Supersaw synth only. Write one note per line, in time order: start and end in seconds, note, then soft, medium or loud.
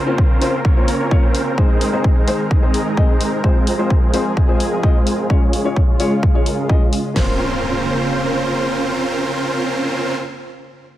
0.07 0.39 C4 medium
0.07 0.39 C#4 medium
0.07 0.39 F4 medium
0.07 0.39 A#4 medium
0.07 0.39 C5 medium
0.41 0.58 C4 medium
0.41 0.58 C#4 medium
0.41 0.58 F4 medium
0.41 0.58 A#4 medium
0.41 0.58 C5 medium
0.65 0.97 C4 medium
0.65 0.97 C#4 medium
0.65 0.97 F4 medium
0.65 0.97 A#4 medium
0.65 0.97 C#5 loud
1.00 1.20 C4 medium
1.00 1.20 C#4 medium
1.00 1.20 F4 medium
1.00 1.20 A#4 medium
1.00 1.20 C#5 medium
1.23 1.55 C4 medium
1.23 1.55 C#4 medium
1.23 1.55 F4 medium
1.23 1.55 A#4 medium
1.23 1.55 C5 medium
1.58 1.90 G#3 medium
1.58 1.90 C4 medium
1.58 1.90 D#4 medium
1.58 1.90 G#4 medium
1.58 1.90 C5 loud
1.93 2.25 G#3 medium
1.93 2.25 C4 medium
1.93 2.25 D#4 medium
1.93 2.25 G#4 medium
1.93 2.25 C5 medium
2.28 2.44 G#3 medium
2.28 2.44 C4 medium
2.28 2.44 D#4 medium
2.28 2.44 G#4 medium
2.28 2.44 C5 loud
2.51 2.83 G#3 medium
2.51 2.83 C4 medium
2.51 2.83 D#4 medium
2.51 2.83 G#4 medium
2.51 2.83 D#5 medium
2.86 3.06 G#3 medium
2.86 3.06 C4 medium
2.86 3.06 D#4 medium
2.86 3.06 G#4 medium
2.86 3.06 D#5 medium
3.09 3.41 G#3 medium
3.09 3.41 C4 medium
3.09 3.41 D#4 medium
3.09 3.41 G#4 medium
3.09 3.41 C5 medium
3.44 3.76 G#3 medium
3.44 3.76 C4 medium
3.44 3.76 F4 medium
3.44 3.76 G#4 medium
3.44 3.76 C5 loud
3.79 4.11 G#3 medium
3.79 4.11 C4 medium
3.79 4.11 F4 medium
3.79 4.11 G#4 medium
3.79 4.11 C5 medium
4.14 4.30 G#3 medium
4.14 4.30 C4 medium
4.14 4.30 F4 medium
4.14 4.30 G#4 medium
4.14 4.30 C5 medium
4.37 4.69 G#3 medium
4.37 4.69 C4 medium
4.37 4.69 F4 medium
4.37 4.69 G#4 medium
4.37 4.69 D#5 medium
4.72 4.92 G#3 medium
4.72 4.92 C4 medium
4.72 4.92 F4 medium
4.72 4.92 G#4 medium
4.72 4.92 D#5 medium
4.95 5.27 G#3 medium
4.95 5.27 C4 medium
4.95 5.27 F4 medium
4.95 5.27 G#4 medium
4.95 5.27 C5 medium
5.30 5.62 G#3 medium
5.30 5.62 C#4 medium
5.30 5.62 F4 medium
5.30 5.62 G#4 medium
5.30 5.62 C#5 loud
5.65 5.97 G#3 medium
5.65 5.97 C#4 medium
5.65 5.97 F4 medium
5.65 5.97 G#4 medium
5.65 5.97 C#5 medium
6.00 6.16 G#3 medium
6.00 6.16 C#4 medium
6.00 6.16 F4 medium
6.00 6.16 G#4 medium
6.00 6.16 C#5 medium
6.23 6.44 G#3 medium
6.23 6.44 C#4 medium
6.23 6.44 F4 medium
6.23 6.44 G#4 medium
6.23 6.44 D#5 medium
6.46 6.72 G#3 medium
6.46 6.72 C#4 medium
6.46 6.72 F4 medium
6.46 6.72 G#4 medium
6.46 6.72 A#4 medium
6.81 6.97 G#3 medium
6.81 6.97 C#4 medium
6.81 6.97 F4 medium
6.81 6.97 G#4 medium
6.81 6.97 D#5 medium
7.16 10.15 C4 medium
7.16 10.15 C#4 medium
7.16 10.15 F4 medium
7.16 10.15 A#4 medium
7.16 10.15 C5 medium